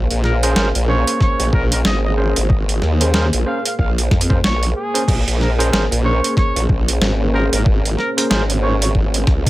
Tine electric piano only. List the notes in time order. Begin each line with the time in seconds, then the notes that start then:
0.43 C#4 G#4 A#4 C5
0.56 C#4 G#4 A#4 C5
0.88 C#4 G#4 A#4 C5
2.17 C#4 G#4 A#4 C5
3.01 C#4 G#4 A#4 C5
3.14 C#4 G#4 A#4 C5
3.46 C#4 G#4 A#4 C5
4.30 C#4 G#4 A#4 C5
4.94 C#4 G#4 A#4 C5
5.59 C#4 G#4 A#4 C5
5.72 C#4 G#4 A#4 C5
6.05 C#4 G#4 A#4 C5
7.34 C#4 G#4 A#4 C5
8.17 C#4 G#4 A#4 C5
8.30 C#4 G#4 A#4 C5
8.62 C#4 G#4 A#4 C5